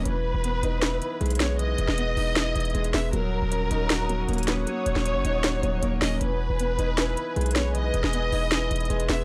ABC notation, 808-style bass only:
X:1
M:4/4
L:1/16
Q:1/4=156
K:Fblyd
V:1 name="808-style bass" clef=bass
=E,,,3 E,,,3 E,,,4 z2 =B,,,4- | =B,,,2 =E,,, E,,,3 E,,,4 E,,,2 E,,,2 E,,,2 | E,,,3 E,,,3 E,,,6 E,,,4 | z2 E,,, E,,,2 G,,, E,,,4 E,,,2 E,,,2 E,,,2 |
=E,,,3 E,,,3 E,,,4 z2 =B,,,4- | =B,,,2 =E,,, E,,,3 E,,,4 E,,,2 E,,,2 E,,,2 |]